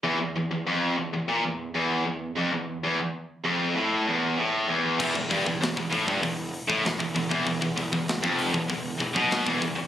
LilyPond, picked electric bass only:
\new Staff \with { instrumentName = "Picked electric bass" } { \clef bass \time 4/4 \key e \phrygian \tempo 4 = 97 r1 | r1 | e,,16 e,,16 g,,16 e,,16 e,,16 e,,16 a,,16 g,,16 e,,8 r16 a,,16 e,,16 e,,16 e,,16 e,,16 | e,,16 e,,16 e,,16 e,,8 f,,8 e,,16 e,,8 e,,16 b,,8 e,,16 e,,16 r16 | }